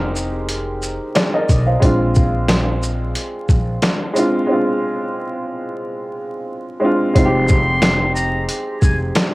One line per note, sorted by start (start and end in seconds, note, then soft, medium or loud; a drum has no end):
0.00 0.96 F1 loud
0.00 1.80 G#3 medium
0.00 1.82 C4 medium
0.00 1.84 D#4 medium
0.00 1.84 G4 loud
0.00 0.13 A#4 medium
0.16 shaker medium
0.49 closed hi-hat medium
0.82 shaker medium
1.15 1.33 G#4 medium
1.15 1.32 D5 medium
1.15 finger snap medium
1.15 snare loud
1.15 snare medium
1.15 closed hi-hat medium
1.34 1.66 A#4 medium
1.34 1.66 D#5 medium
1.49 1.76 B1 loud
1.49 kick medium
1.49 closed hi-hat medium
1.49 shaker medium
1.66 1.99 C5 medium
1.66 1.98 F5 medium
1.80 3.12 A#1 loud
1.80 2.78 G#3 medium
1.80 2.79 C4 medium
1.80 2.80 D4 medium
1.80 kick loud
1.80 closed hi-hat medium
1.85 2.81 F4 medium
2.15 kick medium
2.15 shaker soft
2.48 finger snap medium
2.48 snare loud
2.48 snare medium
2.48 closed hi-hat medium
2.83 shaker medium
3.15 closed hi-hat medium
3.49 3.76 A#1 medium
3.49 kick medium
3.49 shaker medium
3.82 finger snap medium
3.82 snare loud
3.82 snare medium
3.82 closed hi-hat medium
4.13 4.39 G#3 medium
4.13 4.40 C4 medium
4.13 4.41 D4 medium
4.13 closed hi-hat medium
4.13 shaker medium
4.18 4.42 F4 loud
4.47 5.45 G#3 medium
4.47 5.46 C4 medium
4.47 5.46 D4 medium
4.52 5.47 F4 medium
6.80 7.06 G#3 medium
6.80 7.07 C4 medium
6.80 7.08 D4 medium
6.85 7.09 F4 loud
7.14 8.45 F1 loud
7.14 8.12 G#3 medium
7.14 8.12 C4 medium
7.14 8.13 D#4 medium
7.14 8.11 C6 loud
7.14 kick loud
7.14 closed hi-hat medium
7.18 7.24 F4 medium
7.25 8.17 G4 loud
7.48 kick medium
7.48 shaker soft
7.82 snare loud
7.82 snare medium
7.82 closed hi-hat medium
8.14 8.45 A#5 medium
8.14 shaker medium
8.49 closed hi-hat medium
8.82 9.09 F1 medium
8.82 8.98 G#5 medium
8.82 kick medium
8.82 shaker medium
9.15 snare loud
9.15 closed hi-hat medium